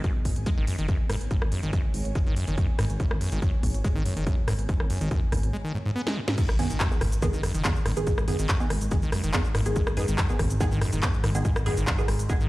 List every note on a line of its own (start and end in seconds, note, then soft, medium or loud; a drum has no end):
0.00 0.13 F#2 loud
0.00 5.53 B3 medium
0.00 5.53 G#4 medium
0.00 0.49 D#5 medium
0.00 5.54 G#5 medium
0.00 closed hi-hat medium
0.04 kick loud
0.25 0.33 G#1 loud
0.25 kick medium
0.25 open hi-hat loud
0.36 0.44 G#1 medium
0.36 5.54 C#5 medium
0.36 closed hi-hat medium
0.46 0.50 G#3 medium
0.46 kick loud
0.46 closed hi-hat medium
0.57 0.65 G#1 medium
0.57 0.66 D#3 medium
0.67 0.77 F#2 medium
0.67 open hi-hat loud
0.78 0.86 F#1 medium
0.78 0.87 D#3 medium
0.78 closed hi-hat medium
0.88 0.98 F#2 loud
0.88 kick loud
0.88 closed hi-hat medium
1.10 1.18 G#1 medium
1.10 1.16 G#2 loud
1.10 cross-stick loud
1.10 open hi-hat loud
1.21 1.28 G#1 medium
1.21 closed hi-hat medium
1.31 1.37 G#2 medium
1.31 kick loud
1.31 closed hi-hat medium
1.42 1.49 G#1 medium
1.42 cross-stick medium
1.52 1.61 F#2 medium
1.52 open hi-hat loud
1.63 1.70 G#1 medium
1.63 1.71 D#3 medium
1.63 closed hi-hat medium
1.73 1.82 F#2 loud
1.73 kick loud
1.73 closed hi-hat medium
1.94 2.02 G#1 medium
1.94 open hi-hat loud
2.05 2.13 G#1 medium
2.05 closed hi-hat medium
2.15 2.19 G#3 medium
2.15 kick loud
2.15 closed hi-hat medium
2.26 2.34 G#1 medium
2.26 2.35 D#3 medium
2.36 2.46 F#2 medium
2.36 open hi-hat loud
2.47 2.55 F#1 medium
2.47 2.56 D#3 medium
2.47 closed hi-hat medium
2.58 2.67 F#2 loud
2.58 kick loud
2.58 closed hi-hat medium
2.79 2.87 G#1 medium
2.79 2.85 G#2 loud
2.79 cross-stick medium
2.79 open hi-hat loud
2.90 2.97 G#1 medium
2.90 closed hi-hat medium
3.00 3.06 G#2 medium
3.00 kick loud
3.00 closed hi-hat medium
3.11 3.18 G#1 medium
3.11 cross-stick medium
3.21 3.30 F#2 medium
3.21 open hi-hat loud
3.32 3.39 G#1 medium
3.32 3.40 D#3 medium
3.32 closed hi-hat medium
3.42 3.51 F#2 loud
3.42 kick loud
3.42 closed hi-hat medium
3.63 3.71 G#1 medium
3.63 kick medium
3.63 open hi-hat loud
3.74 3.82 G#1 medium
3.74 closed hi-hat medium
3.84 3.88 G#3 medium
3.84 kick loud
3.84 closed hi-hat medium
3.95 4.03 G#1 medium
3.95 4.04 D#3 medium
4.05 4.15 F#2 medium
4.05 open hi-hat loud
4.17 4.24 F#1 medium
4.17 4.25 D#3 medium
4.17 closed hi-hat medium
4.27 4.36 F#2 loud
4.27 kick loud
4.27 closed hi-hat medium
4.48 4.56 G#1 medium
4.48 4.54 G#2 loud
4.48 cross-stick medium
4.48 open hi-hat loud
4.59 4.66 G#1 medium
4.59 closed hi-hat medium
4.69 4.75 G#2 medium
4.69 kick loud
4.69 closed hi-hat medium
4.80 4.87 G#1 medium
4.80 cross-stick medium
4.90 4.99 F#2 medium
4.90 open hi-hat loud
5.01 5.08 G#1 medium
5.01 5.09 D#3 medium
5.01 closed hi-hat medium
5.11 5.20 F#2 loud
5.11 kick loud
5.11 closed hi-hat medium
5.32 5.40 G#1 medium
5.32 kick medium
5.32 cross-stick medium
5.32 open hi-hat loud
5.43 5.51 G#1 medium
5.43 closed hi-hat medium
5.53 5.57 G#3 medium
5.64 5.73 D#3 medium
5.75 5.78 G#2 medium
5.86 5.91 G#2 loud
5.96 6.02 B3 loud
6.07 6.18 G#3 medium
6.07 snare medium
6.17 6.20 G#2 medium
6.28 6.36 G#2 medium
6.28 snare loud
6.38 6.44 G#2 medium
6.38 12.49 G#2 medium
6.38 kick loud
6.38 closed hi-hat medium
6.38 crash loud
6.38 impact medium
6.38 shaker soft
6.49 6.56 G#1 medium
6.49 cross-stick medium
6.49 shaker soft
6.59 6.68 F#2 medium
6.59 6.68 D#3 loud
6.59 6.68 B3 loud
6.59 6.68 G#4 loud
6.59 open hi-hat loud
6.70 6.77 G#1 medium
6.70 6.78 D#3 medium
6.70 closed hi-hat medium
6.70 shaker medium
6.80 6.89 F#2 loud
6.80 kick loud
6.80 clap loud
6.80 closed hi-hat medium
6.80 shaker soft
6.91 6.99 D#3 medium
6.91 6.99 B3 medium
6.91 6.99 G#4 loud
6.91 shaker soft
7.01 7.09 G#1 loud
7.01 kick medium
7.01 cross-stick medium
7.01 open hi-hat loud
7.12 7.20 G#1 medium
7.12 closed hi-hat medium
7.12 shaker medium
7.22 7.28 D#3 loud
7.22 7.26 G#3 medium
7.22 7.28 B3 medium
7.22 7.28 G#4 loud
7.22 kick loud
7.22 closed hi-hat medium
7.22 shaker medium
7.33 7.41 G#1 medium
7.33 7.42 D#3 medium
7.33 shaker soft
7.43 7.53 F#2 medium
7.43 cross-stick medium
7.43 open hi-hat loud
7.54 7.62 F#1 medium
7.54 7.63 D#3 medium
7.54 closed hi-hat medium
7.54 shaker medium
7.64 7.74 F#2 loud
7.64 7.70 D#3 medium
7.64 7.70 B3 medium
7.64 7.70 G#4 loud
7.64 kick loud
7.64 clap loud
7.64 closed hi-hat medium
7.64 shaker medium
7.76 shaker soft
7.86 7.94 G#1 medium
7.86 7.92 G#2 loud
7.86 cross-stick medium
7.86 open hi-hat loud
7.97 8.04 G#1 medium
7.97 8.26 D#3 medium
7.97 8.26 B3 medium
7.97 8.26 G#4 loud
7.97 closed hi-hat medium
7.97 shaker medium
8.07 8.13 G#2 medium
8.07 kick loud
8.07 closed hi-hat medium
8.07 shaker soft
8.18 8.25 G#1 medium
8.18 cross-stick medium
8.18 shaker soft
8.28 8.37 F#2 medium
8.28 8.37 D#3 loud
8.28 8.37 B3 loud
8.28 8.37 G#4 loud
8.28 open hi-hat loud
8.39 8.46 G#1 medium
8.39 8.47 D#3 medium
8.39 closed hi-hat medium
8.39 shaker medium
8.49 8.58 F#2 loud
8.49 kick loud
8.49 clap loud
8.49 closed hi-hat medium
8.49 shaker medium
8.60 8.68 D#3 medium
8.60 8.68 B3 medium
8.60 8.68 G#4 loud
8.60 shaker soft
8.70 8.78 G#1 medium
8.70 cross-stick medium
8.70 open hi-hat loud
8.81 8.89 G#1 medium
8.81 closed hi-hat medium
8.81 shaker medium
8.91 8.97 D#3 loud
8.91 8.95 G#3 medium
8.91 8.97 B3 medium
8.91 8.97 G#4 loud
8.91 kick loud
8.91 closed hi-hat medium
8.91 shaker soft
9.02 9.10 G#1 medium
9.02 9.11 D#3 medium
9.02 shaker soft
9.12 9.22 F#2 medium
9.12 cross-stick medium
9.12 open hi-hat loud
9.23 9.31 F#1 medium
9.23 9.32 D#3 medium
9.23 closed hi-hat medium
9.23 shaker medium
9.34 9.43 F#2 loud
9.34 9.39 D#3 medium
9.34 9.39 B3 medium
9.34 9.39 G#4 loud
9.34 kick loud
9.34 clap loud
9.34 closed hi-hat medium
9.34 shaker medium
9.45 shaker soft
9.55 9.63 G#1 medium
9.55 9.61 G#2 loud
9.55 cross-stick loud
9.55 open hi-hat loud
9.66 9.73 G#1 medium
9.66 9.95 D#3 medium
9.66 9.95 B3 medium
9.66 9.95 G#4 loud
9.66 closed hi-hat medium
9.66 shaker medium
9.76 9.82 G#2 medium
9.76 kick loud
9.76 closed hi-hat medium
9.76 shaker medium
9.87 9.94 G#1 medium
9.87 cross-stick loud
9.87 shaker soft
9.97 10.06 F#2 medium
9.97 10.06 D#3 loud
9.97 10.06 B3 loud
9.97 10.06 G#4 loud
9.97 open hi-hat loud
10.08 10.15 G#1 medium
10.08 10.17 D#3 medium
10.08 closed hi-hat medium
10.08 shaker medium
10.18 10.27 F#2 loud
10.18 kick loud
10.18 clap loud
10.18 closed hi-hat medium
10.18 shaker medium
10.29 10.37 D#3 medium
10.29 10.37 B3 medium
10.29 10.37 G#4 loud
10.29 shaker soft
10.39 10.47 G#1 medium
10.39 kick medium
10.39 cross-stick medium
10.39 open hi-hat loud
10.50 10.58 G#1 medium
10.50 closed hi-hat medium
10.50 shaker medium
10.60 10.66 D#3 loud
10.60 10.64 G#3 medium
10.60 10.66 B3 medium
10.60 10.66 G#4 loud
10.60 kick loud
10.60 closed hi-hat medium
10.60 shaker medium
10.72 10.79 G#1 medium
10.72 10.80 D#3 medium
10.72 shaker soft
10.81 10.91 F#2 medium
10.81 cross-stick medium
10.81 open hi-hat loud
10.93 11.00 F#1 medium
10.93 11.01 D#3 medium
10.93 closed hi-hat medium
10.93 shaker medium
11.03 11.12 F#2 loud
11.03 11.08 D#3 loud
11.03 11.08 B3 medium
11.03 11.08 G#4 loud
11.03 kick loud
11.03 clap loud
11.03 closed hi-hat medium
11.03 shaker medium
11.14 shaker soft
11.24 11.32 G#1 medium
11.24 11.30 G#2 loud
11.24 cross-stick loud
11.24 open hi-hat loud
11.35 11.42 G#1 medium
11.35 11.64 D#3 medium
11.35 11.64 B3 medium
11.35 11.64 G#4 loud
11.35 closed hi-hat medium
11.35 shaker medium
11.45 11.51 G#2 medium
11.45 kick loud
11.45 closed hi-hat medium
11.45 shaker medium
11.56 11.63 G#1 medium
11.56 cross-stick loud
11.56 shaker soft
11.66 11.75 F#2 medium
11.66 11.75 D#3 loud
11.66 11.75 B3 loud
11.66 11.75 G#4 loud
11.66 open hi-hat loud
11.77 11.85 G#1 medium
11.77 11.86 D#3 medium
11.77 closed hi-hat medium
11.77 shaker medium
11.87 11.96 F#2 loud
11.87 kick loud
11.87 clap loud
11.87 closed hi-hat medium
11.87 shaker medium
11.98 12.06 D#3 medium
11.98 12.06 B3 medium
11.98 12.06 G#4 medium
11.98 shaker soft
12.08 12.17 G#1 medium
12.08 cross-stick medium
12.08 open hi-hat loud
12.19 12.27 G#1 medium
12.19 closed hi-hat medium
12.19 shaker medium
12.29 12.35 D#3 loud
12.29 12.33 G#3 medium
12.29 12.35 B3 medium
12.29 12.35 G#4 loud
12.29 kick loud
12.29 closed hi-hat medium
12.29 shaker medium
12.41 12.48 G#2 medium
12.41 12.49 D#3 medium
12.41 shaker soft